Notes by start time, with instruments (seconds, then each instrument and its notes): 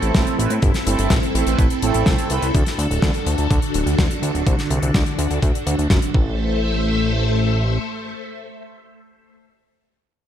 Already playing: analog polysynth A3 C4 E4 A4, string machine C4 E4 A4
0.02 analog synth bass A1, closed hi-hat
0.15 analog synth bass A1, kick, snare, closed hi-hat
0.27 closed hi-hat
0.39 analog synth bass A1, analog polysynth A3 C4 E4 B4, closed hi-hat
0.50 analog synth bass A2, closed hi-hat
0.62 analog synth bass G1, kick, closed hi-hat
0.74 snare, closed hi-hat
0.87 analog synth bass G1, analog polysynth A3 C4 E4 A4, closed hi-hat
0.99 analog synth bass G1, closed hi-hat
1.10 analog synth bass A1, kick, snare, closed hi-hat
1.23 closed hi-hat
1.35 analog synth bass A1, analog polysynth A3 C4 E4 A4, closed hi-hat
1.47 analog synth bass A1, analog polysynth A3 C4 E4 B4, closed hi-hat
1.59 analog synth bass A1, kick, closed hi-hat
1.70 closed hi-hat
1.82 analog synth bass A1, analog polysynth A3 C4 E4 A4, closed hi-hat
1.94 analog synth bass A1, closed hi-hat
2.06 analog synth bass C2, kick, snare, closed hi-hat
2.18 closed hi-hat
2.30 analog synth bass C2, analog polysynth A3 C4 E4 B4, closed hi-hat
2.42 analog synth bass C2, closed hi-hat
2.55 analog synth bass D2, string machine D3 D4 F#4, kick, closed hi-hat
2.66 snare, closed hi-hat
2.78 analog synth bass D2, closed hi-hat
2.90 analog synth bass D1, closed hi-hat
3.02 analog synth bass D2, kick, snare, closed hi-hat
3.14 closed hi-hat
3.26 analog synth bass D2, closed hi-hat
3.38 analog synth bass D2, closed hi-hat
3.51 analog synth bass D2, kick, closed hi-hat
3.62 closed hi-hat
3.74 analog synth bass D1, closed hi-hat
3.86 analog synth bass D2, closed hi-hat
3.99 analog synth bass D2, kick, snare, closed hi-hat
4.11 closed hi-hat
4.22 analog synth bass D2, closed hi-hat
4.34 analog synth bass D1, closed hi-hat
4.47 analog synth bass C2, kick, closed hi-hat
4.59 snare, closed hi-hat
4.70 analog synth bass C2, closed hi-hat
4.82 analog synth bass C2, closed hi-hat
4.94 analog synth bass D2, kick, snare, closed hi-hat
5.06 closed hi-hat
5.19 analog synth bass D2, closed hi-hat
5.30 analog synth bass D2, closed hi-hat
5.43 analog synth bass D2, kick, closed hi-hat
5.55 closed hi-hat
5.67 analog synth bass D2, closed hi-hat
5.79 analog synth bass D2, closed hi-hat
5.90 analog synth bass F#2, kick, snare, closed hi-hat
6.02 closed hi-hat
6.14 analog synth bass A1, string machine A3 A4 C5 E5, kick